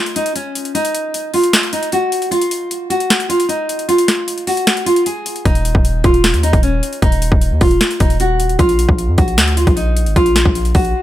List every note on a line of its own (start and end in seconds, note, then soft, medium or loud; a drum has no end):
0.00 0.13 F4 medium
0.06 closed hi-hat medium
0.16 0.32 D#4 medium
0.16 closed hi-hat medium
0.26 closed hi-hat medium
0.36 0.72 C#4 medium
0.36 closed hi-hat medium
0.55 closed hi-hat medium
0.65 closed hi-hat soft
0.75 1.30 D#4 loud
0.75 closed hi-hat medium
0.85 closed hi-hat medium
0.95 closed hi-hat medium
1.14 closed hi-hat medium
1.34 1.71 F4 medium
1.34 open hi-hat medium
1.44 closed hi-hat medium
1.53 snare loud
1.53 closed hi-hat medium
1.63 closed hi-hat medium
1.73 1.88 D#4 medium
1.73 closed hi-hat medium
1.83 closed hi-hat medium
1.92 2.30 F#4 medium
1.92 closed hi-hat medium
2.12 closed hi-hat medium
2.22 closed hi-hat soft
2.31 2.87 F4 loud
2.31 closed hi-hat medium
2.41 closed hi-hat medium
2.51 closed hi-hat medium
2.71 closed hi-hat medium
2.90 3.27 F#4 medium
2.90 closed hi-hat medium
3.00 closed hi-hat medium
3.10 snare loud
3.10 closed hi-hat medium
3.20 closed hi-hat medium
3.29 3.45 F4 medium
3.29 closed hi-hat medium
3.40 closed hi-hat medium
3.49 3.86 D#4 medium
3.49 closed hi-hat medium
3.69 closed hi-hat medium
3.79 closed hi-hat soft
3.89 4.44 F4 loud
3.89 closed hi-hat medium
3.98 closed hi-hat medium
4.08 snare medium
4.08 closed hi-hat medium
4.28 closed hi-hat medium
4.38 closed hi-hat soft
4.47 4.84 F#4 medium
4.47 open hi-hat medium
4.57 closed hi-hat medium
4.67 snare loud
4.67 closed hi-hat medium
4.77 closed hi-hat medium
4.86 5.02 F4 medium
4.86 closed hi-hat medium
4.96 closed hi-hat medium
5.06 5.43 G#4 medium
5.06 closed hi-hat medium
5.26 closed hi-hat medium
5.36 closed hi-hat soft
5.45 5.74 D#1 loud
5.45 6.01 D#4 loud
5.45 kick loud
5.45 closed hi-hat medium
5.55 closed hi-hat medium
5.65 closed hi-hat medium
5.75 6.03 D#1 loud
5.75 kick medium
5.85 closed hi-hat medium
6.04 6.35 D#1 loud
6.04 6.41 F4 medium
6.04 kick loud
6.04 closed hi-hat medium
6.14 closed hi-hat medium
6.24 snare loud
6.24 closed hi-hat medium
6.34 6.52 D#2 loud
6.34 closed hi-hat medium
6.43 6.59 D#4 medium
6.43 closed hi-hat medium
6.53 6.82 D#1 loud
6.53 kick medium
6.53 closed hi-hat medium
6.63 7.00 C#4 medium
6.63 closed hi-hat medium
6.83 closed hi-hat medium
6.93 closed hi-hat soft
7.02 7.31 D#1 loud
7.02 7.58 D#4 loud
7.02 kick loud
7.02 closed hi-hat medium
7.12 closed hi-hat medium
7.22 closed hi-hat medium
7.32 7.53 D#1 loud
7.32 kick medium
7.42 closed hi-hat medium
7.51 7.61 D#2 loud
7.61 7.80 D#1 loud
7.61 7.98 F4 medium
7.61 kick loud
7.61 open hi-hat medium
7.71 closed hi-hat medium
7.81 snare loud
7.81 closed hi-hat medium
7.91 closed hi-hat medium
8.00 8.57 D#1 loud
8.00 8.16 D#4 medium
8.00 kick loud
8.00 closed hi-hat medium
8.10 closed hi-hat medium
8.20 8.57 F#4 medium
8.20 closed hi-hat medium
8.40 closed hi-hat medium
8.49 closed hi-hat soft
8.59 8.87 A#1 loud
8.59 9.14 F4 loud
8.59 kick loud
8.59 closed hi-hat medium
8.69 closed hi-hat medium
8.79 closed hi-hat medium
8.89 9.10 A#1 loud
8.89 kick medium
8.98 closed hi-hat medium
9.08 9.18 F2 loud
9.18 9.39 A#1 loud
9.18 9.55 F#4 medium
9.18 kick loud
9.18 closed hi-hat medium
9.28 closed hi-hat medium
9.38 9.66 D2 medium
9.38 snare loud
9.38 closed hi-hat medium
9.48 closed hi-hat medium
9.57 9.73 F4 medium
9.57 closed hi-hat medium
9.67 10.08 A#1 loud
9.67 kick loud
9.67 closed hi-hat medium
9.76 10.13 D#4 medium
9.76 closed hi-hat medium
9.97 closed hi-hat medium
10.06 10.16 G#1 loud
10.06 closed hi-hat soft
10.16 10.44 A#1 loud
10.16 10.71 F4 loud
10.16 kick loud
10.16 closed hi-hat medium
10.26 closed hi-hat medium
10.36 snare medium
10.36 closed hi-hat medium
10.45 10.74 A#1 loud
10.45 kick medium
10.55 closed hi-hat medium
10.65 closed hi-hat soft
10.75 10.94 A#1 loud
10.75 11.02 F#4 medium
10.75 kick loud
10.75 open hi-hat medium
10.85 closed hi-hat medium